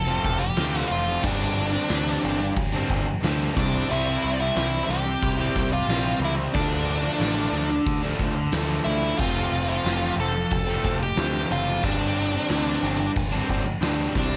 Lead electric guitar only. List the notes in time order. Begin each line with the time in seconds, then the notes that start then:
Already playing: A4 A5
0.39 G4 G5
0.91 F4 F5
1.24 D4 D5
3.57 D4 D5
3.90 E4 E5
4.33 D5
4.40 E4 E5
4.90 G4 G5
5.73 F4 F5
6.25 E4 E5
6.54 D4 D5
8.84 E4 E5
9.17 F4 F5
9.69 F4 F5
10.20 A4 A5
11.02 G4 G5
11.51 F4 F5
11.84 D4 D5
14.17 D4 D5